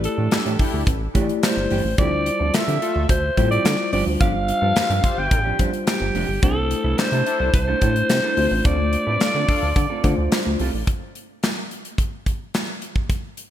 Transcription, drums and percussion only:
0.04 closed hi-hat medium
0.31 snare loud
0.31 clap loud
0.31 closed hi-hat medium
0.46 closed hi-hat medium
0.59 kick loud
0.59 open hi-hat medium
0.87 kick loud
0.87 closed hi-hat medium
1.15 kick medium
1.15 closed hi-hat medium
1.29 closed hi-hat soft
1.43 snare loud
1.43 clap medium
1.43 closed hi-hat loud
1.70 open hi-hat medium
1.98 kick loud
1.98 closed hi-hat medium
2.26 closed hi-hat medium
2.54 snare loud
2.54 clap medium
2.54 closed hi-hat medium
2.68 closed hi-hat medium
2.82 closed hi-hat medium
3.09 kick loud
3.09 closed hi-hat medium
3.37 kick medium
3.37 closed hi-hat medium
3.52 closed hi-hat soft
3.65 snare loud
3.65 clap medium
3.65 closed hi-hat medium
3.93 open hi-hat medium
4.21 kick loud
4.21 closed hi-hat medium
4.48 closed hi-hat medium
4.76 snare loud
4.76 clap medium
4.76 closed hi-hat medium
4.90 closed hi-hat soft
5.04 kick loud
5.04 closed hi-hat medium
5.31 kick loud
5.31 closed hi-hat medium
5.59 kick medium
5.59 closed hi-hat medium
5.73 closed hi-hat soft
5.87 snare loud
5.87 clap medium
5.87 closed hi-hat medium
6.15 open hi-hat medium
6.43 kick loud
6.43 closed hi-hat medium
6.71 closed hi-hat medium
6.98 snare loud
6.98 clap loud
6.98 closed hi-hat medium
7.13 closed hi-hat medium
7.26 closed hi-hat medium
7.54 kick loud
7.54 closed hi-hat medium
7.81 kick medium
7.81 closed hi-hat medium
7.96 closed hi-hat soft
8.09 snare loud
8.09 clap medium
8.09 closed hi-hat medium
8.37 open hi-hat medium
8.65 kick loud
8.65 closed hi-hat medium
8.93 closed hi-hat medium
9.20 snare loud
9.20 clap medium
9.20 closed hi-hat medium
9.49 kick loud
9.49 open hi-hat medium
9.76 kick loud
9.76 closed hi-hat medium
10.04 kick medium
10.04 closed hi-hat medium
10.32 snare loud
10.32 clap medium
10.32 closed hi-hat loud
10.59 open hi-hat medium
10.87 kick loud
10.87 closed hi-hat medium
11.15 closed hi-hat medium
11.43 snare loud
11.43 clap medium
11.43 closed hi-hat medium
11.71 closed hi-hat medium
11.85 closed hi-hat soft
11.98 kick loud
11.98 closed hi-hat medium
12.26 kick medium
12.26 closed hi-hat medium
12.54 snare loud
12.54 clap medium
12.54 closed hi-hat medium
12.82 closed hi-hat medium
12.96 kick medium
13.10 kick loud
13.10 closed hi-hat medium
13.37 closed hi-hat medium

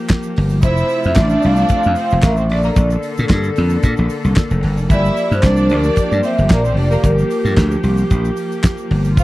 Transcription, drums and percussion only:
0.08 kick loud
0.08 snare loud
0.08 clap medium
0.08 closed hi-hat medium
0.08 shaker medium
0.23 shaker medium
0.36 open hi-hat medium
0.50 shaker soft
0.62 kick loud
0.62 closed hi-hat medium
0.62 shaker medium
0.77 shaker medium
0.89 open hi-hat medium
0.89 shaker medium
1.04 shaker medium
1.15 kick loud
1.15 snare loud
1.15 clap medium
1.15 closed hi-hat medium
1.15 shaker medium
1.29 shaker medium
1.42 open hi-hat medium
1.42 shaker medium
1.56 shaker medium
1.69 kick loud
1.69 closed hi-hat medium
1.69 shaker medium
1.83 shaker medium
1.95 open hi-hat medium
1.95 shaker medium
2.10 shaker medium
2.22 kick loud
2.22 snare loud
2.22 clap loud
2.22 closed hi-hat medium
2.22 shaker medium
2.37 shaker medium
2.50 open hi-hat medium
2.63 shaker soft
2.76 kick loud
2.76 closed hi-hat medium
2.76 shaker medium
2.90 shaker medium
3.03 open hi-hat medium
3.03 shaker medium
3.17 shaker medium
3.29 kick loud
3.29 snare loud
3.29 clap medium
3.29 closed hi-hat medium
3.29 shaker medium
3.44 shaker medium
3.56 open hi-hat medium
3.56 shaker medium
3.70 shaker medium
3.83 kick loud
3.83 closed hi-hat medium
3.83 shaker medium
3.97 shaker soft
4.09 open hi-hat medium
4.09 shaker medium
4.24 shaker medium
4.36 kick loud
4.36 snare loud
4.36 clap medium
4.36 closed hi-hat medium
4.36 shaker medium
4.50 shaker medium
4.63 open hi-hat medium
4.77 shaker soft
4.90 kick loud
4.90 closed hi-hat medium
4.90 shaker medium
5.05 shaker medium
5.17 open hi-hat medium
5.17 shaker medium
5.32 shaker medium
5.43 kick loud
5.43 snare loud
5.43 clap medium
5.43 closed hi-hat medium
5.43 shaker medium
5.57 shaker medium
5.69 open hi-hat medium
5.69 shaker soft
5.84 shaker medium
5.96 kick medium
5.96 closed hi-hat medium
5.96 shaker medium
6.12 shaker soft
6.23 open hi-hat medium
6.23 shaker medium
6.38 shaker soft
6.50 kick loud
6.50 snare loud
6.50 clap medium
6.50 closed hi-hat medium
6.50 shaker medium
6.65 shaker medium
6.77 open hi-hat medium
6.91 shaker medium
7.04 kick loud
7.04 closed hi-hat medium
7.04 shaker medium
7.19 shaker medium
7.30 open hi-hat medium
7.30 shaker medium
7.45 shaker medium
7.57 kick loud
7.57 snare loud
7.57 clap medium
7.57 closed hi-hat medium
7.57 shaker medium
7.71 shaker medium
7.84 open hi-hat medium
7.84 shaker medium
7.97 shaker medium
8.10 kick medium
8.10 closed hi-hat medium
8.10 shaker medium
8.25 shaker medium
8.36 open hi-hat medium
8.36 shaker medium
8.52 shaker soft
8.63 kick loud
8.63 snare loud
8.63 clap loud
8.63 closed hi-hat medium
8.63 shaker medium
8.78 shaker medium
8.91 open hi-hat medium
9.04 shaker soft
9.17 kick loud
9.17 closed hi-hat medium
9.17 shaker medium

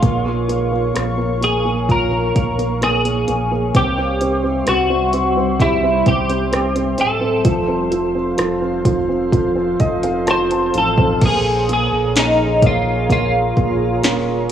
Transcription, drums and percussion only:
0.03 kick medium
0.03 closed hi-hat medium
0.50 closed hi-hat medium
0.96 cross-stick loud
0.96 closed hi-hat medium
1.43 closed hi-hat medium
1.89 kick medium
1.89 closed hi-hat medium
2.36 kick medium
2.36 closed hi-hat medium
2.59 closed hi-hat soft
2.82 cross-stick medium
2.82 closed hi-hat medium
3.05 closed hi-hat medium
3.28 closed hi-hat medium
3.74 kick loud
3.74 closed hi-hat medium
4.21 closed hi-hat medium
4.67 cross-stick loud
4.67 closed hi-hat medium
5.13 closed hi-hat medium
5.60 kick medium
5.60 closed hi-hat medium
6.06 kick medium
6.06 closed hi-hat medium
6.29 closed hi-hat soft
6.53 cross-stick loud
6.53 closed hi-hat medium
6.76 closed hi-hat medium
6.98 closed hi-hat medium
7.45 kick loud
7.45 closed hi-hat medium
7.91 closed hi-hat medium
8.38 cross-stick loud
8.38 closed hi-hat medium
8.85 kick medium
8.85 closed hi-hat medium
9.32 kick medium
9.32 closed hi-hat medium
9.80 kick medium
9.80 closed hi-hat medium
10.03 closed hi-hat medium
10.27 cross-stick loud
10.27 closed hi-hat medium
10.51 closed hi-hat medium
10.74 closed hi-hat medium
10.98 kick medium
11.22 kick loud
11.22 closed hi-hat medium
11.22 crash medium
11.69 closed hi-hat medium
12.16 snare loud
12.16 closed hi-hat medium
12.62 kick medium
12.62 closed hi-hat medium
13.10 kick medium
13.10 closed hi-hat medium
13.57 kick medium
13.57 closed hi-hat medium
14.03 snare loud
14.03 closed hi-hat medium

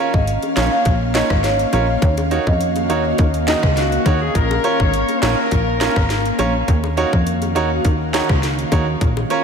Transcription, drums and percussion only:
0.14 kick medium
0.27 closed hi-hat medium
0.43 closed hi-hat medium
0.43 high bongo medium
0.57 snare loud
0.57 clap loud
0.57 closed hi-hat medium
0.85 kick medium
0.85 closed hi-hat medium
1.15 snare loud
1.15 clap loud
1.15 closed hi-hat medium
1.30 kick loud
1.30 cross-stick loud
1.44 snare medium
1.44 closed hi-hat medium
1.59 closed hi-hat medium
1.73 closed hi-hat medium
1.73 high bongo medium
1.73 low bongo medium
2.02 kick loud
2.02 closed hi-hat medium
2.17 closed hi-hat soft
2.17 high bongo medium
2.31 closed hi-hat medium
2.47 kick medium
2.61 closed hi-hat medium
2.76 closed hi-hat medium
2.76 high bongo medium
2.90 closed hi-hat medium
3.18 kick loud
3.18 closed hi-hat medium
3.34 closed hi-hat medium
3.48 snare loud
3.48 clap loud
3.48 closed hi-hat medium
3.63 kick loud
3.63 cross-stick loud
3.77 snare medium
3.77 closed hi-hat medium
3.92 closed hi-hat medium
4.06 kick loud
4.06 closed hi-hat medium
4.06 high bongo medium
4.06 low bongo medium
4.35 kick loud
4.35 closed hi-hat medium
4.51 high bongo medium
4.64 closed hi-hat medium
4.80 kick medium
4.94 closed hi-hat medium
5.09 closed hi-hat medium
5.09 high bongo medium
5.23 snare loud
5.23 clap medium
5.23 closed hi-hat medium
5.51 kick medium
5.51 closed hi-hat medium
5.81 snare loud
5.81 clap loud
5.81 closed hi-hat medium
5.96 kick loud
5.96 cross-stick loud
6.10 snare medium
6.10 closed hi-hat medium
6.25 closed hi-hat medium
6.39 closed hi-hat medium
6.39 high bongo medium
6.39 low bongo medium
6.68 kick loud
6.68 closed hi-hat medium
6.84 high bongo medium
6.97 closed hi-hat medium
7.13 kick medium
7.27 closed hi-hat medium
7.42 closed hi-hat medium
7.42 high bongo medium
7.56 closed hi-hat medium
7.85 kick medium
7.85 closed hi-hat medium
8.14 snare loud
8.14 clap loud
8.14 closed hi-hat medium
8.29 kick loud
8.29 cross-stick loud
8.43 snare medium
8.43 closed hi-hat medium
8.59 closed hi-hat medium
8.72 kick loud
8.72 closed hi-hat medium
8.72 high bongo medium
8.72 low bongo medium
9.01 kick loud
9.01 closed hi-hat medium
9.17 high bongo medium
9.30 closed hi-hat medium

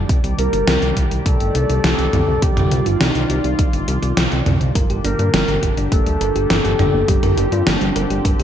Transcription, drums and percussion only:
0.09 kick loud
0.09 closed hi-hat medium
0.24 closed hi-hat soft
0.39 closed hi-hat medium
0.53 closed hi-hat soft
0.68 snare loud
0.68 closed hi-hat medium
0.82 closed hi-hat soft
0.97 kick medium
0.97 closed hi-hat medium
1.11 closed hi-hat soft
1.26 kick loud
1.26 closed hi-hat medium
1.40 closed hi-hat soft
1.55 closed hi-hat medium
1.70 closed hi-hat soft
1.84 snare loud
1.84 closed hi-hat medium
1.99 closed hi-hat soft
2.13 closed hi-hat soft
2.13 mid tom medium
2.42 kick loud
2.42 closed hi-hat medium
2.57 closed hi-hat soft
2.57 mid tom medium
2.71 closed hi-hat medium
2.86 closed hi-hat soft
3.01 snare loud
3.01 closed hi-hat medium
3.15 closed hi-hat soft
3.30 closed hi-hat medium
3.44 closed hi-hat soft
3.59 kick loud
3.59 closed hi-hat medium
3.73 closed hi-hat soft
3.88 closed hi-hat medium
4.03 closed hi-hat soft
4.17 snare loud
4.17 closed hi-hat medium
4.32 closed hi-hat soft
4.46 closed hi-hat soft
4.46 mid tom medium
4.61 closed hi-hat soft
4.75 kick loud
4.75 closed hi-hat medium
4.90 closed hi-hat soft
5.05 closed hi-hat medium
5.19 closed hi-hat soft
5.34 snare loud
5.34 closed hi-hat medium
5.48 closed hi-hat soft
5.63 kick medium
5.63 closed hi-hat medium
5.77 closed hi-hat soft
5.92 kick loud
5.92 closed hi-hat medium
6.06 closed hi-hat soft
6.21 closed hi-hat medium
6.36 closed hi-hat soft
6.50 snare loud
6.50 closed hi-hat medium
6.65 closed hi-hat soft
6.79 closed hi-hat soft
6.79 mid tom medium
7.08 kick loud
7.08 closed hi-hat medium
7.23 closed hi-hat soft
7.23 mid tom medium
7.38 closed hi-hat medium
7.52 closed hi-hat soft
7.67 snare loud
7.67 closed hi-hat medium
7.81 closed hi-hat soft
7.96 closed hi-hat medium
8.10 closed hi-hat soft
8.25 kick loud
8.25 closed hi-hat medium
8.40 closed hi-hat soft

